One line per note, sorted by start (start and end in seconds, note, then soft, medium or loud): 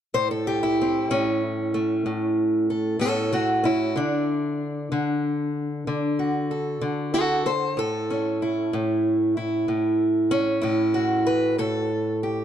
0.14 1.09 A2 medium
0.14 0.30 C5 loud
0.31 0.62 A4 medium
0.47 1.26 G4 medium
0.63 1.42 E4 medium
0.81 1.10 C4 medium
1.10 2.04 A2 medium
1.10 3.00 C#4 medium
1.74 3.32 A3 soft
2.06 2.98 A2 medium
2.70 3.01 A4 soft
2.99 3.95 A2 medium
2.99 3.32 C#4 medium
2.99 3.64 A4 medium
3.32 3.64 A3 medium
3.32 3.96 F#4 medium
3.64 3.95 C#4 medium
3.64 3.96 E4 medium
3.96 4.90 D3 medium
3.96 6.50 D4 medium
4.92 5.86 D3 medium
5.87 6.80 D3 medium
6.19 7.13 F#4 soft
6.51 7.14 A4 soft
6.81 7.77 D3 medium
7.14 7.45 F#4 medium
7.14 7.45 A4 medium
7.46 7.50 A4 medium
7.46 7.77 C5 medium
7.77 8.73 A2 medium
7.77 10.32 A4 medium
8.10 10.30 C#4 soft
8.42 9.36 E4 soft
8.73 9.68 A2 medium
9.37 10.60 E4 soft
9.68 10.62 A2 medium
10.31 11.26 C#4 medium
10.62 11.57 A2 medium
10.62 11.25 E4 medium
10.94 11.89 F#4 medium
11.27 11.58 B4 medium
11.58 12.45 A2 medium
11.58 12.22 A4 loud
12.23 12.45 G4 medium